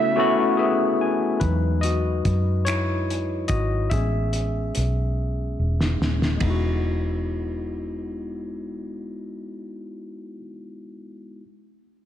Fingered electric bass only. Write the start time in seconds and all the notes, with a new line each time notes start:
1.42 E2
2.26 F#2
3.51 G#1
3.92 A1
4.77 B1
5.59 E1
6.01 D#1
6.42 E1